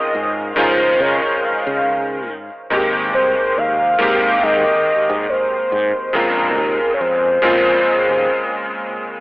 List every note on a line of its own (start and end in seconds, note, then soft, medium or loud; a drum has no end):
0.00 0.52 D#3 medium
0.00 0.53 G#3 medium
0.00 0.53 C4 medium
0.00 0.53 C#4 medium
0.00 0.54 F4 medium
0.00 0.57 D#5 loud
0.15 0.51 G#2 medium
0.56 0.94 C#3 medium
0.56 2.26 D#3 medium
0.56 2.26 G#3 medium
0.56 2.27 C#4 medium
0.56 2.27 D#4 medium
0.56 2.27 F4 loud
0.56 1.02 C5 medium
1.00 1.20 C#3 medium
1.00 1.45 C#5 medium
1.43 2.29 F5 loud
1.67 2.29 C#3 medium
2.29 2.49 G#2 medium
2.70 3.15 G#1 loud
2.70 3.95 D#3 medium
2.70 3.95 G#3 medium
2.70 3.96 A#3 medium
2.70 3.96 C4 medium
2.70 3.97 G4 medium
3.14 3.34 C2 medium
3.14 3.59 C5 loud
3.58 3.94 D#2 medium
3.58 4.45 F5 loud
3.98 4.37 G#2 medium
3.98 6.09 D#3 medium
3.98 6.10 G#3 medium
3.98 6.10 A#3 medium
3.98 6.10 C4 medium
3.98 6.11 G4 loud
4.43 4.63 G#2 medium
4.43 5.31 D#5 loud
5.10 5.26 G#2 medium
5.29 6.14 C5 loud
5.72 5.92 G#2 medium
6.13 6.58 A#1 loud
6.13 7.38 C#3 medium
6.13 7.38 G#3 medium
6.13 7.39 A#3 medium
6.13 7.39 C4 medium
6.13 7.39 F4 medium
6.13 6.90 A#4 loud
6.58 6.77 D#2 medium
6.81 muted fretless electric bass stroke soft
6.94 7.02 C#5 medium
7.01 7.37 F2 medium
7.01 9.15 C5 loud
7.42 7.80 A#2 medium
7.42 9.20 C#3 medium
7.42 9.20 G#3 medium
7.42 9.20 A#3 medium
7.42 9.20 C4 medium
7.42 9.20 F4 loud
8.10 8.26 D#2 medium